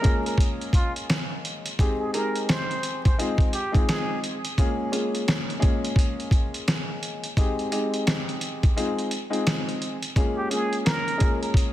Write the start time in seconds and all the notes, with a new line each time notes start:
Already playing: A#4
0.01 G#3 A#3 C#4 F4 G#4, kick, closed hi-hat
0.26 A#4, closed hi-hat
0.38 kick, closed hi-hat
0.61 closed hi-hat
0.73 F4, kick, closed hi-hat
0.96 closed hi-hat
1.10 cross-stick, snare, closed hi-hat
1.45 closed hi-hat
1.66 closed hi-hat
1.79 G#3 C4 D#4 G4 G#4, kick, closed hi-hat
2.00 G#4
2.13 G#3 C4 D#4 G4 G#4 A#4, closed hi-hat
2.36 closed hi-hat
2.48 C5, cross-stick, snare, closed hi-hat
2.71 closed hi-hat
2.83 closed hi-hat
3.05 C5, kick, closed hi-hat
3.18 G#3 C4 D#4 F4 G#4, closed hi-hat
3.38 kick, closed hi-hat
3.53 G4, closed hi-hat
3.72 G#3 C4 D#4 F4 G#4, kick, closed hi-hat
3.88 G#4, cross-stick, snare, closed hi-hat
4.24 closed hi-hat
4.45 closed hi-hat
4.58 G#3 A#3 C#4 F4 G#4, kick, closed hi-hat
4.91 G#3 A#3 C#4 F4 G#4, closed hi-hat
5.15 closed hi-hat
5.28 cross-stick, snare, closed hi-hat
5.50 closed hi-hat
5.59 G#3 A#3 C#4 F4 G#4, kick, closed hi-hat
5.85 closed hi-hat
5.96 kick, closed hi-hat
6.20 closed hi-hat
6.31 kick, closed hi-hat
6.54 closed hi-hat
6.68 cross-stick, snare, closed hi-hat
7.03 closed hi-hat
7.24 closed hi-hat
7.37 G#3 C4 D#4 G4 G#4, kick, closed hi-hat
7.59 closed hi-hat
7.71 G#3 C4 D#4 G4 G#4, closed hi-hat
7.94 closed hi-hat
8.07 cross-stick, snare, closed hi-hat
8.29 closed hi-hat
8.41 closed hi-hat
8.63 kick, closed hi-hat
8.76 G#3 C4 D#4 F4 G#4, closed hi-hat
8.99 closed hi-hat
9.11 closed hi-hat
9.30 G#3 C4 D#4 F4 G#4, closed hi-hat
9.47 cross-stick, snare, closed hi-hat
9.69 closed hi-hat
9.82 closed hi-hat
10.02 closed hi-hat
10.16 G#3 A#3 C#4 F4 G#4, kick, closed hi-hat
10.37 G4
10.50 G#3 A#3 C#4 F4 G#4, closed hi-hat
10.73 closed hi-hat
10.85 A#4, cross-stick, snare, closed hi-hat
11.08 closed hi-hat
11.17 G#3 A#3 C#4 F4 G#4, kick, closed hi-hat
11.43 A#4, closed hi-hat
11.54 kick, closed hi-hat